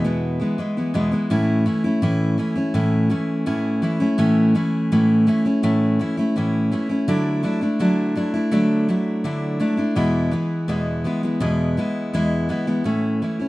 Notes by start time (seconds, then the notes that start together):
0.04 E2 B2 E3 G#3 B3 E4
0.40 E3 G#3 B3 E4
0.58 E3 G#3 B3 E4
0.77 E3 G#3 B3 E4
0.94 E2 B2 E3 G#3 B3 E4
1.12 E3 G#3 B3 E4
1.30 A2 E3 A3 C#4 E4
1.66 E3 A3 C#4 E4
1.84 A3 C#4 E4
2.02 A2 E3 A3 C#4 E4
2.38 E3 A3 C#4 E4
2.55 A3 C#4 E4
2.74 A2 E3 A3 C#4 E4
3.10 E3 A3 C#4 E4
3.46 A2 E3 A3 C#4 E4
3.82 E3 A3 C#4 E4
4.00 A3 C#4 E4
4.18 A2 E3 A3 C#4 E4
4.55 E3 A3 C#4 E4
4.92 A2 E3 A3 C#4 E4
5.27 E3 A3 C#4 E4
5.45 A3 C#4 E4
5.63 A2 E3 A3 C#4 E4
5.99 E3 A3 C#4 E4
6.17 A3 C#4 E4
6.36 A2 E3 A3 C#4 E4
6.71 E3 A3 C#4 E4
6.89 A3 C#4 E4
7.08 D3 F#3 A3 D4 E4
7.43 F#3 A3 D4 E4
7.61 A3 D4 E4
7.79 D3 F#3 A3 D4 E4
8.15 F#3 A3 D4 E4
8.34 A3 D4 E4
8.51 D3 F#3 A3 D4 E4
8.89 F#3 A3 D4 E4
9.24 D3 F#3 A3 D4 E4
9.60 F#3 A3 D4 E4
9.77 A3 D4 E4
9.95 E2 B2 E3 G#3 B3 E4
10.31 E3 G#3 B3 E4
10.68 E2 B2 E3 G#3 B3 E4
11.04 E3 G#3 B3 E4
11.23 E3 G#3 B3 E4
11.40 E2 B2 E3 G#3 B3 E4
11.77 E3 G#3 B3 E4
12.13 E2 B2 E3 G#3 B3 E4
12.49 E3 G#3 B3 E4
12.67 E3 G#3 B3 E4
12.84 A2 E3 A3 C#4 E4
13.22 E3 A3 C#4 E4
13.39 A3 C#4 E4